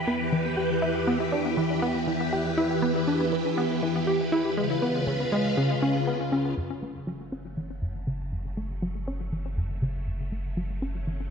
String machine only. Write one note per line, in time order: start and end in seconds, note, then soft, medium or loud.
0.00 4.53 E2 medium
0.00 4.53 E3 medium
0.00 4.53 G4 medium
0.00 4.53 B4 medium
4.57 6.55 C#2 medium
4.57 6.55 C#3 medium
4.57 6.55 F4 medium
4.57 6.55 B4 medium
6.58 11.30 C#3 medium
6.58 11.30 F#3 medium
6.58 11.30 A3 medium